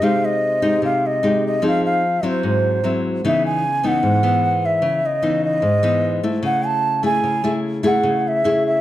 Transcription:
0.02 nylon-string guitar C3 G#3 D#4 G4, bansuri F5
0.25 bansuri D#5
0.62 nylon-string guitar G#3 D#4 G4
0.82 nylon-string guitar C3, bansuri F5
1.06 bansuri D#5
1.23 nylon-string guitar G#3 D#4 G4
1.47 bansuri D#5
1.62 nylon-string guitar F3 C4 D#4 G#4
1.68 bansuri F5
1.86 bansuri F5
2.23 nylon-string guitar F#3 C4 E4
2.27 bansuri C5
2.43 nylon-string guitar G#2
2.84 nylon-string guitar F#3 C4 E4
3.25 nylon-string guitar C#3 E3 B3 D#4, bansuri E5
3.46 bansuri G#5
3.83 nylon-string guitar E3 B3 D#4, bansuri F#5
4.03 nylon-string guitar G#2
4.23 nylon-string guitar E3 B3
4.65 bansuri E5
4.82 nylon-string guitar C#3
5.06 bansuri D#5
5.22 nylon-string guitar E3 B3 D#4
5.45 bansuri D#5
5.62 nylon-string guitar G#2
5.83 nylon-string guitar E3 B3 D#4
6.23 nylon-string guitar A3 E4
6.43 nylon-string guitar C#3, bansuri F#5
6.66 bansuri A5
7.03 nylon-string guitar A3 E4 G#4, bansuri G#5
7.24 nylon-string guitar C#3
7.44 nylon-string guitar A3 E4 G#4
7.83 nylon-string guitar A3 E4 G#4, bansuri F#5
8.03 nylon-string guitar C#3
8.28 bansuri E5
8.44 nylon-string guitar A3 E4 G#4
8.67 bansuri E5

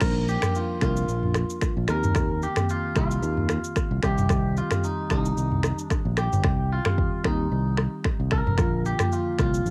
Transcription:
Already playing: clean electric guitar A#4
0.01 fingered electric bass A#1, marimba F3 A#3 D4 A#4, finger snap, kick, cross-stick, crash, shaker
0.28 clean electric guitar G4, shaker
0.42 marimba F3 A#3 D4 A#4, finger snap, cross-stick, mid tom, shaker
0.55 clean electric guitar F4, shaker
0.81 fingered electric bass C2, marimba F3 A#3 D4 A#4, clean electric guitar F4, finger snap, kick, cross-stick, shaker
0.97 shaker
1.08 fingered electric bass A#1, shaker
1.23 mid tom
1.34 finger snap, cross-stick, shaker
1.50 shaker
1.61 finger snap, kick, cross-stick, shaker
1.77 fingered electric bass A#1
1.88 fingered electric bass D#2, marimba D#3 A#3 C4 G4, clean electric guitar A#4, finger snap, cross-stick, shaker
2.04 mid tom, shaker
2.15 finger snap, kick, cross-stick, shaker
2.42 clean electric guitar G4, shaker
2.56 marimba D#3 A#3 C4 G4, finger snap, cross-stick, mid tom, shaker
2.69 clean electric guitar F4, shaker
2.95 fingered electric bass C2, marimba D#3 A#3 C4 G4, clean electric guitar F4, finger snap, kick, cross-stick, shaker
3.11 shaker
3.22 fingered electric bass D#2, shaker
3.37 mid tom
3.49 finger snap, cross-stick, shaker
3.64 shaker
3.76 finger snap, kick, cross-stick, shaker
3.91 fingered electric bass C2
4.02 fingered electric bass C2, marimba D#3 G3 C4 G4, clean electric guitar G4, finger snap, kick, cross-stick, shaker
4.18 mid tom, shaker
4.29 marimba D#3 G3 C4 G4, finger snap, kick, cross-stick, shaker
4.57 clean electric guitar F4, shaker
4.71 marimba D#3 G3 C4 G4, finger snap, cross-stick, mid tom, shaker
4.84 clean electric guitar D#4, shaker
5.10 fingered electric bass C2, marimba D#3 G3 C4 G4, clean electric guitar D#4, finger snap, kick, cross-stick, shaker
5.25 shaker
5.37 fingered electric bass C2, shaker
5.52 mid tom
5.63 finger snap, cross-stick, shaker
5.79 clean electric guitar D4, shaker
5.90 finger snap, kick, cross-stick, shaker
6.05 fingered electric bass A#1
6.17 clean electric guitar G4, finger snap, cross-stick, shaker
6.32 fingered electric bass G1, mid tom, shaker
6.44 fingered electric bass C2, finger snap, kick, cross-stick
6.72 clean electric guitar F4
6.85 marimba D#3 G3 C4 G4, finger snap, cross-stick, mid tom
6.98 kick
7.24 fingered electric bass D#2, marimba D#3 G3 C4 G4, clean electric guitar D#4, finger snap, kick, cross-stick
7.52 fingered electric bass C2
7.77 finger snap, cross-stick
8.04 finger snap, kick, cross-stick
8.20 fingered electric bass C2
8.31 clean electric guitar A#4, finger snap, kick, cross-stick
8.46 fingered electric bass F1, mid tom
8.58 fingered electric bass A#1, marimba D3 F3 A#3 F4, finger snap, kick, cross-stick, shaker
8.86 clean electric guitar G4, shaker
8.99 marimba D3 F3 A#3 F4, finger snap, cross-stick, mid tom, shaker
9.12 clean electric guitar F4, shaker
9.39 fingered electric bass C2, marimba D3 F3 A#3 F4, clean electric guitar F4, finger snap, kick, cross-stick, shaker
9.54 shaker
9.66 fingered electric bass A#1, shaker

